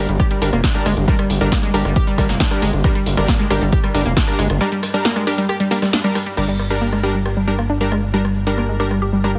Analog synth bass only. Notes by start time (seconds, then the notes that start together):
0.09 G1
0.42 G1
0.53 F1
0.86 G1
0.97 G1
1.30 G1
1.41 G1
1.74 G1
1.85 G1
2.18 G1
2.29 F1
2.62 G1
2.73 G1
3.06 G1
3.18 G1
3.50 G1
3.62 G1
3.95 G1
4.06 F1
4.39 G1
4.50 G1
6.37 G1